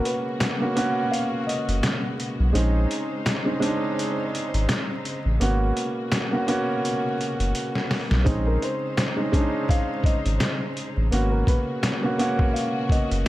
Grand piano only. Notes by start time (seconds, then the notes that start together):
Already playing: A#3 B3 C#4 F#4
0.60 A#3 B3 C#4 F#4
0.75 A#3 B3 C#4 F#4
2.53 G#3 C4 C#4 D#4
3.45 G#3 C4 C#4 D#4
3.60 G#3 C4 C#4 D4
3.68 D#4
5.40 A#3 B3 C#4 F#4
6.31 A#3 B3 C#4 F#4
6.47 A#3 B3 C#4 F#4
8.24 G#3 C4 C#4 D#4
9.16 G#3 C4 C#4 D#4
9.31 G#3 C4 C#4 D4
9.40 D#4
11.11 A#3 B3 C#4 F#4
12.03 A#3 B3 C#4 F#4
12.18 A#3 B3 C#4 F#4